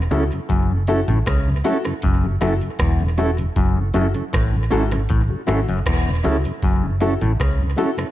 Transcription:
0.11 C#2 C#3 F#3 A3 C#4 E4 F#4 A4, closed hi-hat
0.32 F#2 C#3, closed hi-hat
0.49 F#1 F#2, kick, closed hi-hat
0.71 F#2 C#3
0.87 F#3 A3 C#4 E4 F#4 A4, closed hi-hat
1.08 A1 F#2 A2 C#3 C#4 E4 A4, closed hi-hat
1.26 C#2 C#3, kick, cross-stick, closed hi-hat
1.48 F#2 C#3
1.64 F#3 A3 C#4 E4 F#4 A4, closed hi-hat
1.85 F#2 C#3 C#4 E4 A4, cross-stick, closed hi-hat
2.02 F#1 F#2, kick, closed hi-hat
2.23 F#2 C#3 F#4 A4
2.41 F#1 F#2 F#3 A3 C#4 E4 F#4 A4, cross-stick, closed hi-hat
2.61 F#2 C#3, closed hi-hat
2.79 E1 E2, kick, cross-stick, closed hi-hat
3.01 F#2 C#3
3.17 F#3 A3 C#4 E4 F#4 A4, closed hi-hat
3.38 F#2 C#3, closed hi-hat
3.56 F#1 F#2, kick, closed hi-hat
3.76 F#2 C#3
3.93 F#1 F#2 F#3 A3 C#4 E4 F#4 A4, closed hi-hat
4.14 F#2 C#3 C#4 E4 A4, closed hi-hat
4.33 A1 A2, kick, cross-stick, closed hi-hat
4.53 F#2 C#3
4.70 G#1 G#2 F#3 A3 C#4 E4 F#4 A4, closed hi-hat
4.91 F#2 C#3 C#4 E4 A4, cross-stick, closed hi-hat
5.09 A1 A2, kick, closed hi-hat
5.28 F#2 C#3 F#4 A4
5.46 G#1 G#2 F#3 A3 C#4 E4 F#4 A4, cross-stick, closed hi-hat
5.67 F#1 F#2 C#3, closed hi-hat
5.86 E1 E2, kick, cross-stick, closed hi-hat
6.06 F#2 C#3
6.24 C#2 C#3 F#3 A3 C#4 E4 F#4 A4, closed hi-hat
6.45 F#2 C#3, closed hi-hat
6.62 F#1 F#2, kick, closed hi-hat
6.84 F#2 C#3
7.00 F#3 A3 C#4 E4 F#4 A4, closed hi-hat
7.21 A1 F#2 A2 C#3 C#4 E4 A4, closed hi-hat
7.40 C#2 C#3, kick, cross-stick, closed hi-hat
7.59 F#2 C#3
7.76 F#3 A3 C#4 E4 F#4 A4, closed hi-hat
7.97 F#2 C#3 C#4 E4 A4, cross-stick, closed hi-hat

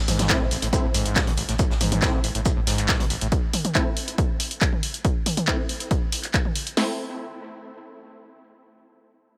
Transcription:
0.08 A1 G#2, open hi-hat, mid tom, shaker
0.19 A1, snare, closed hi-hat, mid tom
0.29 A2 A3 C4 E4, kick, snare, clap, closed hi-hat, shaker
0.41 A1 C3
0.51 A1, open hi-hat, shaker
0.62 A1 A2, closed hi-hat
0.73 A2 A3 C4 E4, kick, closed hi-hat, shaker
0.84 A1 A2
0.94 A1 G#2, open hi-hat, shaker
1.05 A1, closed hi-hat
1.16 A2, kick, snare, clap, closed hi-hat, shaker
1.27 A1 C3, closed hi-hat, mid tom
1.37 A1, open hi-hat, shaker
1.48 A1 A2, snare, closed hi-hat
1.59 A2, kick, closed hi-hat, shaker
1.70 A1 A2, snare
1.81 A1 G#2, open hi-hat, mid tom, shaker
1.92 A1, closed hi-hat, mid tom
2.02 A2 A3 C4 E4, kick, snare, clap, closed hi-hat, shaker
2.13 A1 C3
2.24 A1, open hi-hat, shaker
2.35 A1 A2, closed hi-hat
2.45 A2, kick, closed hi-hat, shaker
2.57 A1 A2
2.67 A1 G#2, snare, open hi-hat, shaker
2.78 A1, clap, closed hi-hat
2.89 A2, kick, snare, clap, closed hi-hat, shaker
3.00 A1 C3, closed hi-hat, mid tom
3.10 A1, open hi-hat, shaker
3.21 A1 A2, closed hi-hat
3.32 kick, closed hi-hat
3.53 open hi-hat, mid tom
3.65 closed hi-hat, mid tom
3.75 A3 C4 E4, kick, clap, closed hi-hat
3.97 open hi-hat
4.08 closed hi-hat
4.18 kick, closed hi-hat
4.40 open hi-hat
4.51 closed hi-hat
4.61 kick, clap, closed hi-hat
4.73 mid tom
4.83 open hi-hat
4.94 closed hi-hat
5.05 kick, closed hi-hat
5.26 open hi-hat, mid tom
5.37 closed hi-hat, mid tom
5.48 A3 C4 E4, kick, clap, closed hi-hat
5.69 open hi-hat
5.80 closed hi-hat
5.91 kick, closed hi-hat
6.12 open hi-hat
6.24 clap, closed hi-hat
6.34 kick, clap, closed hi-hat
6.45 mid tom
6.56 open hi-hat
6.67 closed hi-hat
6.77 A3 C4 E4, snare, open hi-hat

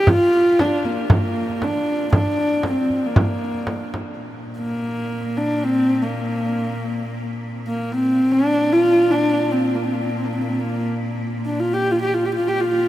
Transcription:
0.07 F4, frame drum
0.21 frame drum
0.59 D4, frame drum
0.84 A#3, frame drum
1.10 A#3, frame drum
1.49 frame drum
1.62 D4, frame drum
2.13 D4, frame drum
2.26 frame drum
2.63 C4, frame drum
2.90 frame drum
3.06 A#3
3.16 frame drum
3.54 frame drum
3.67 frame drum
3.94 frame drum
4.19 A#2
4.58 A#3
5.37 D4
5.63 C4
6.02 A#3
7.67 A#3
7.93 C4
8.32 A#2 D4
8.72 F4
9.11 D4
9.51 C4
9.74 A#3
9.83 C4
9.92 A#3
10.01 C4
10.09 A#3
10.17 C4
10.25 A#3
10.33 C4
10.41 A#3
10.48 C4
10.58 A#3
11.45 D4
11.60 F4
11.73 G4
11.91 F4
12.02 G4
12.13 F4
12.25 G4
12.35 F4
12.47 A#2 G4
12.60 F4

